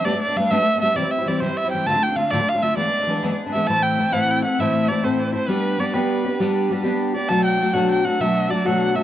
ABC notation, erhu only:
X:1
M:12/8
L:1/8
Q:3/8=133
K:Ephr
V:1 name="Erhu"
d d f e2 e d e d c e g | a g f d f e d4 z e | [K:Ador] a g2 f g f e2 d c2 c | B2 d B4 z4 d |
a g2 f g f e2 d f2 e |]